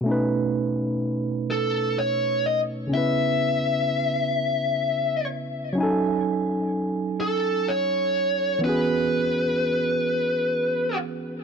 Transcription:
X:1
M:6/8
L:1/8
Q:3/8=42
K:Bmix
V:1 name="Lead electric guitar"
z3 A c d | e4- e z | z3 A c2 | B4- B z |]
V:2 name="Tine electric piano"
[B,,A,CDB]6 | [C,B,CEB]6 | [F,CDAg]6 | [E,B,CFG]6 |]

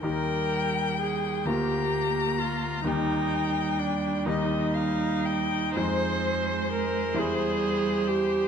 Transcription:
X:1
M:6/8
L:1/8
Q:3/8=43
K:Eb
V:1 name="Violin"
g3 b3 | g3 e f g | c6 |]
V:2 name="Viola"
B2 A G2 F | E2 D E3 | c2 B A2 G |]
V:3 name="Grand piano"
[E,,EGB]3 [D,,B,FB]3 | [E,,B,EG]3 [E,,B,EG]3 | [F,,A,Ec]3 [=E,,G,=Ec]3 |]
V:4 name="Cello" clef=bass
G,3 B,3 | G,6 | A,3 G,3 |]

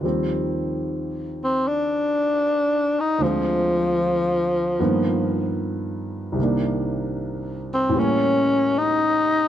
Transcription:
X:1
M:4/4
L:1/8
Q:"Swing" 1/4=76
K:Eb
V:1 name="Tenor saxophone"
z3 C D3 E | F,6 z2 | z3 C ^C2 E2 |]
V:2 name="Grand piano" clef=bass
[E,,E,F,G,C]8 | [D,,D,F,A,C]4 [G,,^D,F,^A,=B,]4 | [C,,C,E,B,D]4 [=A,,=E,G,B,^C]4 |]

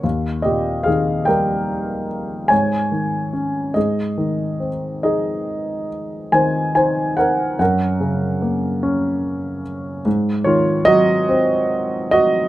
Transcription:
X:1
M:6/8
L:1/8
Q:3/8=48
K:Abmix
V:1 name="Grand piano"
z [=Ge] [Af] [B=g]3 | [da]3 [Ae]2 z | [Ae]3 [ca] [ca] [Bg] | [Bg]4- [Bg] z |
z [Fd] [Ge]3 [Ge] |]
V:2 name="Grand piano" clef=bass
E,, B,, E, =G,3 | A,, E, D A,, E, C | E3 E, E C | G,, D, B, D3 |
A,, E, G, C3 |]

